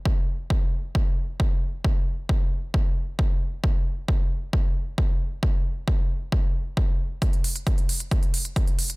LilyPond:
\new DrumStaff \with { instrumentName = "Drums" } \drummode { \time 4/4 \tempo 4 = 134 bd4 bd4 bd4 bd4 | bd4 bd4 bd4 bd4 | bd4 bd4 bd4 bd4 | bd4 bd4 bd4 bd4 |
<hh bd>16 hh16 hho16 hh16 <hh bd>16 hh16 hho16 hh16 <hh bd>16 hh16 hho16 hh16 <hh bd>16 hh16 hho16 hh16 | }